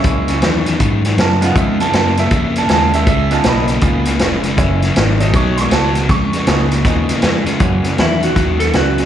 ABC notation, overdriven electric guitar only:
X:1
M:4/4
L:1/8
Q:"Swing" 1/4=159
K:C#dor
V:1 name="Overdriven electric guitar" clef=bass
[F,,C,] [F,,C,] [F,,D,] [F,,D,] [F,,D,] [F,,D,] [F,,C,] [F,,C,] | [C,G,] [C,G,] [C,A,] [C,A,] [C,A,] [C,A,] [C,G,] [C,G,] | [C,G,] [C,G,] [C,A,] [C,A,] [C,A,] [C,A,] [C,G,] [C,G,] | [F,,C,] [F,,C,] [F,,D,] [F,,D,] [B,,F,] [B,,G,] [B,,F,] [B,,F,] |
[C,G,] [C,G,] [C,A,] [C,A,] [C,A,] [C,A,] [C,G,] [C,G,] | [F,,C,] [F,,C,] [F,,D,] [F,,D,] [F,,D,] [F,,D,] [F,,C,] [F,,C,] |]